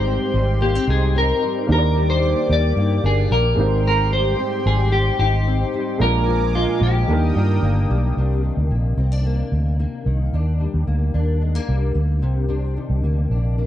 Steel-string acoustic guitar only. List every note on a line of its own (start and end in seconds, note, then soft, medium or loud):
0.00 1.69 G#2 medium
0.00 0.34 G3 medium
0.06 0.60 C4 medium
0.34 1.42 G3 medium
0.61 0.75 A#3 medium
0.75 1.14 C4 medium
0.88 3.03 D#4 medium
1.15 1.74 C4 medium
1.42 1.96 G3 medium
1.69 5.19 D#3 medium
1.97 2.50 G3 medium
2.24 2.76 A#3 medium
2.50 3.88 G3 medium
2.77 3.30 A#3 medium
3.04 3.63 D4 medium
3.31 3.64 A#3 medium
3.58 3.84 G#2 medium
3.85 6.01 G#2 medium
4.12 4.65 G3 medium
4.39 4.92 C4 medium
4.67 5.72 G3 medium
4.93 5.46 C4 medium
5.20 6.07 D#4 medium
5.47 6.07 C4 medium
5.74 6.06 G3 medium
6.00 7.09 A#2 medium
6.28 6.81 F3 medium
6.55 7.15 G#3 medium
6.82 7.15 F3 medium
7.09 8.17 D#3 medium
7.36 8.18 D4 medium
7.64 8.70 A#3 medium
7.90 8.44 G3 medium
8.18 10.33 C3 medium
8.18 8.97 D4 medium
8.44 10.06 D#3 medium
8.71 9.25 A#3 medium
8.98 9.12 C4 medium
9.12 10.33 D4 medium
9.26 9.79 A#3 medium
9.79 10.87 A#3 medium
10.07 10.33 D#3 medium
10.33 12.22 D#3 medium
10.33 11.14 D4 medium
10.60 11.68 G3 medium
10.87 11.41 A#3 medium
11.14 12.49 D4 medium
11.41 11.55 G#3 medium
11.55 11.93 A#3 soft
11.68 12.76 G3 medium
11.94 12.52 A#3 medium
12.22 12.47 C3 medium
12.49 13.67 C3 medium
12.49 13.31 D4 medium
12.77 13.67 D#3 medium
13.04 13.57 A#3 medium
13.31 13.67 D4 medium
13.58 13.67 A#3 medium